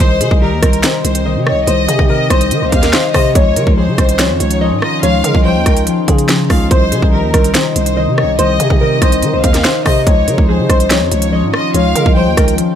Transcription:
0.00 808-style bass C2, ambient pad C3 C4 D#4 G4, harp D#3, nylon-string guitar C5, violin section C5
0.21 808-style bass C3, harp G3, nylon-string guitar G#4, closed hi-hat
0.31 808-style bass C2, kick
0.42 harp D#3, nylon-string guitar G4, violin section A#4
0.52 808-style bass D#2
0.62 808-style bass C2, harp C4, nylon-string guitar A#4, kick, cross-stick, closed hi-hat
0.73 closed hi-hat
0.83 harp D#3, nylon-string guitar C5, finger snap, snare, closed hi-hat
1.04 808-style bass C2, violin section C5, closed hi-hat
1.15 closed hi-hat
1.25 harp D#3, nylon-string guitar D#5
1.36 808-style bass C3
1.46 violin section C#5, harp D#5, cross-stick
1.52 808-style bass C2
1.67 808-style bass C2, harp D#3, nylon-string guitar C5, violin section D#5, closed hi-hat
1.88 808-style bass C3, harp G3, nylon-string guitar G#4, closed hi-hat
1.99 808-style bass C3, kick
2.10 harp D#3, nylon-string guitar A#4, violin section D#5
2.30 808-style bass C2, harp C4, nylon-string guitar C5, kick, cross-stick, closed hi-hat
2.41 closed hi-hat
2.51 harp D#3, 808-style bass D#3, closed hi-hat
2.62 808-style bass C2, nylon-string guitar C5
2.72 808-style bass D#2, violin section F5, kick, closed hi-hat
2.83 nylon-string guitar A#4, snare, closed hi-hat
2.93 harp D#3, nylon-string guitar C5, finger snap, snare
3.14 808-style bass C3, nylon-string guitar C5, violin section D#5, harp D#5, kick, cross-stick, open hi-hat
3.35 808-style bass C#2, ambient pad D#3 C#4 D#4 F4, harp F3, violin section C#5, nylon-string guitar C#5, kick, closed hi-hat
3.56 808-style bass C#3, harp G#3, nylon-string guitar A#4, closed hi-hat
3.67 808-style bass C#2, kick
3.77 harp F3, nylon-string guitar G#4, violin section C5
3.88 808-style bass C#3
3.98 808-style bass C2, harp C#4, nylon-string guitar C5, kick, cross-stick, closed hi-hat
4.09 closed hi-hat
4.19 harp F3, nylon-string guitar C#5, finger snap, snare, closed hi-hat
4.30 808-style bass F2
4.40 808-style bass C#2, violin section C#5, closed hi-hat
4.51 closed hi-hat
4.61 harp F3, nylon-string guitar D#5
4.72 808-style bass G#2
4.82 harp F4, violin section D#5, cross-stick
5.03 808-style bass C#2, harp F3, nylon-string guitar C#5, violin section F5, closed hi-hat
5.24 808-style bass C#3, harp G#3, nylon-string guitar A#4, closed hi-hat
5.35 808-style bass C2, kick
5.45 harp F3, nylon-string guitar C5, violin section G5
5.56 808-style bass D#2
5.66 808-style bass C#2, harp C#4, nylon-string guitar A#4, kick, cross-stick, closed hi-hat
5.77 closed hi-hat
5.87 harp F3, closed hi-hat
6.08 808-style bass C#3, nylon-string guitar G#4, kick, closed hi-hat
6.18 closed hi-hat
6.28 harp F3, finger snap, snare, closed hi-hat
6.50 808-style bass C#2, harp F4, nylon-string guitar G#4, violin section F5, kick, cross-stick, open hi-hat
6.71 808-style bass C2, ambient pad C3 C4 G4, harp D#3, violin section C5, nylon-string guitar C5, kick, closed hi-hat
6.92 808-style bass C3, harp G3, nylon-string guitar G#4, closed hi-hat
7.02 808-style bass C2, kick
7.13 harp D#3, nylon-string guitar G4, violin section A#4
7.23 808-style bass D#2
7.34 808-style bass C2, harp C4, nylon-string guitar A#4, kick, cross-stick, closed hi-hat
7.44 closed hi-hat
7.54 harp D#3, nylon-string guitar C5, finger snap, snare, closed hi-hat
7.76 808-style bass C2, violin section C5, closed hi-hat
7.86 closed hi-hat
7.97 harp D#3, nylon-string guitar D#5
8.07 808-style bass C3
8.18 violin section C#5, harp D#5, cross-stick
8.23 808-style bass C2
8.39 808-style bass C2, harp D#3, nylon-string guitar C5, violin section D#5, closed hi-hat
8.60 808-style bass C3, harp G3, nylon-string guitar G#4, closed hi-hat
8.70 808-style bass C3, kick
8.81 harp D#3, nylon-string guitar A#4, violin section D#5
9.02 808-style bass C2, harp C4, nylon-string guitar C5, kick, cross-stick, closed hi-hat
9.12 closed hi-hat
9.22 harp D#3, 808-style bass D#3, closed hi-hat
9.33 808-style bass C2, nylon-string guitar C5
9.44 808-style bass D#2, violin section F5, kick, closed hi-hat
9.54 nylon-string guitar A#4, snare, closed hi-hat
9.64 harp D#3, nylon-string guitar C5, finger snap, snare
9.85 808-style bass C3, nylon-string guitar C5, violin section D#5, harp D#5, kick, cross-stick, open hi-hat
10.06 808-style bass C#2, ambient pad D#3 C#4 F4, harp F3, violin section C#5, nylon-string guitar C#5, kick, closed hi-hat
10.28 808-style bass C#3, harp G#3, nylon-string guitar A#4, closed hi-hat
10.38 808-style bass C#2, kick
10.49 harp F3, nylon-string guitar G#4, violin section C5
10.59 808-style bass C#3
10.70 808-style bass C2, harp C#4, nylon-string guitar C5, kick, cross-stick, closed hi-hat
10.80 closed hi-hat
10.90 harp F3, nylon-string guitar C#5, finger snap, snare, closed hi-hat
11.01 808-style bass F2
11.11 808-style bass C#2, violin section C#5, closed hi-hat
11.22 closed hi-hat
11.32 harp F3, nylon-string guitar D#5
11.43 808-style bass G#2
11.54 harp F4, violin section D#5, cross-stick
11.74 808-style bass C#2, harp F3, nylon-string guitar C#5, violin section F5, closed hi-hat
11.95 808-style bass C#3, harp G#3, nylon-string guitar A#4, closed hi-hat
12.06 808-style bass C2, kick
12.16 harp F3, nylon-string guitar C5, violin section G5
12.27 808-style bass D#2
12.37 808-style bass C#2, harp C#4, nylon-string guitar A#4, kick, cross-stick, closed hi-hat
12.48 closed hi-hat
12.58 harp F3, closed hi-hat

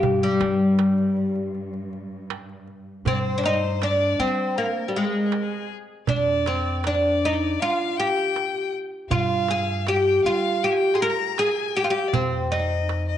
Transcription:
Already playing: cello section G2, oud G4
0.03 upright bass G2, darbuka dum
0.22 oud G3, darbuka ka
0.40 upright bass G3, darbuka tek
0.79 darbuka tek
0.98 darbuka ka
1.17 darbuka ka
1.36 darbuka ka
1.55 darbuka ka
1.74 darbuka ka
1.93 darbuka ka
2.30 darbuka tek
2.49 darbuka ka
2.67 darbuka ka
3.05 upright bass G2, oud C4, violin C5, darbuka dum
3.13 violin D5
3.19 violin C5
3.24 darbuka ka
3.38 oud D4
3.44 oud D#4, darbuka tek
3.82 oud D4, violin D5, darbuka tek
4.00 darbuka ka
4.19 upright bass G3, oud C4, violin C5
4.57 oud A#3, violin A#4, darbuka ka
4.76 darbuka ka
4.88 oud G3
4.95 oud G#3, violin G#4, darbuka ka
5.02 violin A#4
5.11 violin G#4
5.18 violin A#4
5.26 violin G#4
5.32 violin A#4, darbuka tek
5.42 violin G#4
5.51 darbuka ka
5.70 darbuka ka
6.07 upright bass F2, oud D4, violin D5, darbuka dum
6.27 darbuka ka
6.46 oud C4, darbuka tek
6.83 oud D4, violin D5, darbuka tek
7.03 darbuka ka
7.25 oud D#4
7.59 oud F4, violin F5, darbuka ka
7.79 darbuka ka
7.97 oud G4, violin G5, darbuka ka
8.36 darbuka tek
8.55 darbuka ka
8.73 darbuka ka
9.10 upright bass G2, oud F4, violin F5, darbuka dum
9.30 darbuka ka
9.48 oud G#4, darbuka tek
9.86 oud G4, violin G5, darbuka tek
10.05 darbuka ka
10.24 upright bass G3, oud F4, violin F5
10.63 oud G4, violin G5, darbuka ka
10.71 violin G#5
10.77 violin G5
10.81 darbuka ka
10.94 oud G#4, violin C6
11.00 oud A#4, violin A#5, darbuka ka
11.38 oud G#4, violin G#5, darbuka tek
11.56 darbuka ka
11.75 oud G4, violin G5, darbuka ka
11.84 oud F4
11.90 oud G4, violin G5
12.07 violin D5
12.13 upright bass F2, oud C4, violin C5, darbuka dum
12.33 darbuka ka
12.51 oud D#4, violin D#5, darbuka tek
12.89 darbuka tek
13.08 violin D#5, darbuka ka

